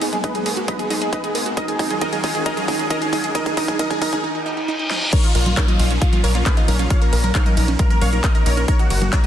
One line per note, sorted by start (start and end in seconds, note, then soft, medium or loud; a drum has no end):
0.00 0.20 G#1 loud
0.00 1.53 G#3 medium
0.00 1.53 A#3 medium
0.00 1.54 B3 medium
0.00 0.07 D#4 loud
0.00 0.10 G#4 medium
0.00 open hi-hat loud
0.00 riser medium
0.13 0.21 G#4 medium
0.13 0.16 D#5 medium
0.13 closed hi-hat soft
0.13 high conga medium
0.24 0.29 D#4 medium
0.24 0.32 B4 medium
0.24 0.32 D#5 medium
0.24 kick loud
0.24 closed hi-hat medium
0.35 0.38 D#4 medium
0.35 0.43 G#4 medium
0.35 closed hi-hat soft
0.35 high conga medium
0.46 0.65 G#1 loud
0.46 0.54 G#4 medium
0.46 0.49 A#4 medium
0.46 open hi-hat loud
0.57 0.62 F#4 loud
0.57 closed hi-hat soft
0.68 0.71 D#4 loud
0.68 0.76 B4 medium
0.68 0.76 D#5 loud
0.68 kick loud
0.68 closed hi-hat medium
0.68 high conga medium
0.79 0.84 D#4 medium
0.79 0.87 G#4 medium
0.79 closed hi-hat soft
0.90 0.96 D#4 loud
0.90 0.99 G#4 medium
0.90 open hi-hat loud
0.90 high conga medium
1.02 1.10 G#4 medium
1.02 1.05 D#5 medium
1.02 closed hi-hat soft
1.13 1.18 D#4 loud
1.13 1.21 B4 medium
1.13 1.21 D#5 medium
1.13 kick loud
1.13 closed hi-hat medium
1.24 1.27 D#4 medium
1.24 1.32 G#4 medium
1.24 closed hi-hat soft
1.35 1.54 G#1 loud
1.35 1.43 G#4 medium
1.35 1.38 A#4 medium
1.35 open hi-hat loud
1.46 1.51 F#4 loud
1.46 closed hi-hat soft
1.57 4.21 D#3 medium
1.57 1.60 D#4 loud
1.57 4.21 D#4 medium
1.57 4.21 F4 medium
1.57 4.21 F#4 medium
1.57 4.21 A#4 medium
1.57 1.65 A#4 medium
1.57 1.65 D#5 loud
1.57 kick loud
1.57 closed hi-hat loud
1.68 1.73 D#4 medium
1.68 1.76 G#4 medium
1.68 closed hi-hat soft
1.79 1.98 D#2 loud
1.79 1.84 D#4 loud
1.79 1.87 G#4 medium
1.79 kick loud
1.79 open hi-hat loud
1.90 1.99 G#4 medium
1.90 1.94 D#5 medium
1.90 closed hi-hat soft
1.90 high conga medium
2.01 2.05 D#4 loud
2.01 2.10 A#4 medium
2.01 2.10 D#5 medium
2.01 kick loud
2.01 closed hi-hat medium
2.13 2.18 D#4 medium
2.13 2.21 G#4 medium
2.13 closed hi-hat soft
2.13 high conga medium
2.24 2.43 D#2 loud
2.24 2.29 D#4 loud
2.24 2.32 G#4 medium
2.24 kick loud
2.24 open hi-hat loud
2.35 2.43 G#4 medium
2.35 2.38 D#5 medium
2.35 closed hi-hat soft
2.46 2.49 D#4 loud
2.46 2.54 A#4 medium
2.46 2.54 D#5 loud
2.46 kick loud
2.46 closed hi-hat loud
2.57 2.62 D#4 medium
2.57 2.65 G#4 medium
2.57 closed hi-hat soft
2.57 high conga medium
2.68 2.87 D#2 loud
2.68 2.73 D#4 loud
2.68 2.76 G#4 medium
2.68 kick loud
2.68 open hi-hat loud
2.79 2.87 G#4 medium
2.79 2.82 D#5 medium
2.79 closed hi-hat soft
2.90 2.94 D#4 loud
2.90 2.99 A#4 medium
2.90 2.99 D#5 medium
2.90 kick loud
2.90 closed hi-hat loud
3.01 3.07 D#4 medium
3.01 3.10 G#4 medium
3.01 closed hi-hat soft
3.13 3.32 D#2 loud
3.13 3.18 D#4 loud
3.13 3.21 G#4 medium
3.13 kick loud
3.13 open hi-hat loud
3.13 high conga medium
3.24 3.32 G#4 medium
3.24 3.27 D#5 medium
3.24 closed hi-hat soft
3.35 3.38 D#4 loud
3.35 3.43 A#4 medium
3.35 3.43 D#5 loud
3.35 kick loud
3.35 closed hi-hat loud
3.46 3.51 D#4 medium
3.46 3.54 G#4 medium
3.46 kick medium
3.46 closed hi-hat soft
3.57 3.76 D#2 loud
3.57 3.60 D#4 loud
3.57 3.65 A#4 medium
3.57 3.65 D#5 loud
3.57 kick loud
3.57 open hi-hat loud
3.68 3.73 D#4 medium
3.68 3.76 G#4 medium
3.68 kick loud
3.68 closed hi-hat soft
3.68 high conga medium
3.79 3.82 D#4 loud
3.79 3.87 A#4 medium
3.79 3.87 D#5 loud
3.79 kick loud
3.79 closed hi-hat loud
3.90 3.96 D#4 medium
3.90 3.99 G#4 medium
3.90 kick medium
3.90 closed hi-hat soft
3.90 high conga medium
4.02 4.20 D#2 loud
4.02 4.05 D#4 loud
4.02 4.10 A#4 medium
4.02 4.10 D#5 loud
4.02 kick loud
4.02 open hi-hat loud
4.13 4.18 D#4 medium
4.13 4.21 G#4 medium
4.13 kick medium
4.13 closed hi-hat soft
4.24 4.27 D#4 loud
4.24 reverse cymbal medium
4.35 4.40 D#4 medium
4.46 4.49 D#4 loud
4.57 4.62 D#4 medium
4.68 4.71 D#4 loud
4.79 4.85 D#4 medium
4.90 4.94 D#4 loud
4.90 snare medium
5.02 5.07 D#4 medium
5.13 8.65 F3 medium
5.13 9.27 A#3 medium
5.13 8.65 C#4 medium
5.13 5.18 D#4 medium
5.13 5.21 A#4 medium
5.13 5.21 C#5 loud
5.13 kick loud
5.13 closed hi-hat loud
5.13 crash loud
5.13 downlifter medium
5.24 5.32 F4 medium
5.24 5.29 D#5 medium
5.24 closed hi-hat soft
5.35 5.54 A#1 loud
5.35 5.43 F4 medium
5.35 5.43 A#4 medium
5.35 open hi-hat loud
5.35 ride medium
5.46 5.51 A#3 medium
5.46 5.54 F4 medium
5.46 closed hi-hat soft
5.46 high conga medium
5.57 5.62 D#4 medium
5.57 5.65 A#4 medium
5.57 5.65 C#5 medium
5.57 kick loud
5.57 clap loud
5.57 closed hi-hat loud
5.68 5.76 F4 medium
5.68 5.73 D#5 loud
5.68 closed hi-hat soft
5.68 high conga medium
5.79 5.98 A#1 loud
5.79 5.82 D#4 medium
5.79 5.87 F4 medium
5.79 open hi-hat loud
5.79 ride medium
5.90 5.96 C#4 loud
5.90 closed hi-hat soft
6.02 6.09 F4 medium
6.02 6.10 F4 medium
6.02 kick loud
6.02 closed hi-hat loud
6.13 6.16 A#3 medium
6.13 6.21 F4 medium
6.13 closed hi-hat soft
6.13 high conga medium
6.24 6.43 A#1 loud
6.24 6.32 A#4 medium
6.24 6.32 C#5 medium
6.24 open hi-hat loud
6.24 ride medium
6.35 6.40 A#3 medium
6.35 6.43 F4 medium
6.35 closed hi-hat soft
6.46 6.51 D#4 medium
6.46 6.54 G#4 medium
6.46 6.54 B4 medium
6.46 kick loud
6.46 clap loud
6.46 closed hi-hat loud
6.57 6.65 F4 medium
6.57 6.62 D#5 loud
6.57 closed hi-hat soft
6.68 6.87 A#1 loud
6.68 6.76 C#4 medium
6.68 6.71 D#4 medium
6.68 6.76 A#4 medium
6.68 open hi-hat loud
6.68 ride medium
6.68 high conga medium
6.79 6.84 C#4 loud
6.79 6.87 F4 medium
6.79 closed hi-hat soft
6.90 6.98 F4 medium
6.90 6.99 C#5 medium
6.90 6.99 F5 loud
6.90 kick loud
6.90 closed hi-hat loud
7.02 7.05 A#3 medium
7.02 7.10 A#4 medium
7.02 closed hi-hat soft
7.13 7.32 A#1 loud
7.13 7.20 A#4 medium
7.13 7.21 A#4 medium
7.13 open hi-hat loud
7.13 ride medium
7.24 7.29 A#4 medium
7.24 7.32 A#4 medium
7.24 closed hi-hat soft
7.24 high conga medium
7.35 7.40 D#4 medium
7.35 7.43 C#5 medium
7.35 7.43 F5 medium
7.35 kick loud
7.35 clap loud
7.35 closed hi-hat loud
7.46 7.54 A#4 medium
7.46 7.51 D#5 loud
7.46 closed hi-hat soft
7.46 high conga medium
7.57 7.76 A#1 loud
7.57 7.60 D#4 medium
7.57 7.65 A#4 medium
7.57 open hi-hat loud
7.57 ride medium
7.68 7.73 C#4 loud
7.68 closed hi-hat soft
7.79 7.87 F4 medium
7.79 7.88 A#4 medium
7.79 kick loud
7.79 closed hi-hat medium
7.79 high conga medium
7.90 7.98 C#4 medium
7.90 7.99 A#4 medium
7.90 closed hi-hat soft
8.02 8.20 A#1 loud
8.02 8.09 A#4 medium
8.02 8.10 C#5 medium
8.02 8.10 F5 medium
8.02 open hi-hat loud
8.02 ride medium
8.02 high conga medium
8.13 8.20 D#4 medium
8.13 8.21 A#4 medium
8.13 closed hi-hat soft
8.24 8.29 D#4 medium
8.24 8.32 A#4 medium
8.24 8.32 D#5 medium
8.24 kick loud
8.24 clap loud
8.24 closed hi-hat loud
8.35 8.43 A#4 medium
8.35 8.40 D#5 loud
8.35 closed hi-hat soft
8.46 8.65 A#1 loud
8.46 8.54 D#4 medium
8.46 8.54 A#4 medium
8.46 8.54 C#5 medium
8.46 open hi-hat loud
8.46 ride medium
8.57 8.62 C#4 loud
8.57 8.65 A#4 medium
8.57 closed hi-hat soft
8.68 9.27 F#3 medium
8.68 9.27 G#3 medium
8.68 8.73 D#4 medium
8.68 8.76 A#4 medium
8.68 8.76 C#5 loud
8.68 kick loud
8.68 closed hi-hat medium
8.79 8.88 F#4 medium
8.79 8.84 D#5 medium
8.79 closed hi-hat soft
8.90 9.09 F#1 loud
8.90 8.99 F#4 medium
8.90 8.98 A#4 medium
8.90 open hi-hat loud
8.90 ride medium
9.02 9.07 A#3 medium
9.02 9.10 F#4 medium
9.02 closed hi-hat soft
9.02 high conga medium
9.13 9.18 D#4 medium
9.13 9.21 A#4 medium
9.13 9.21 C#5 medium
9.13 kick loud
9.13 clap loud
9.13 closed hi-hat medium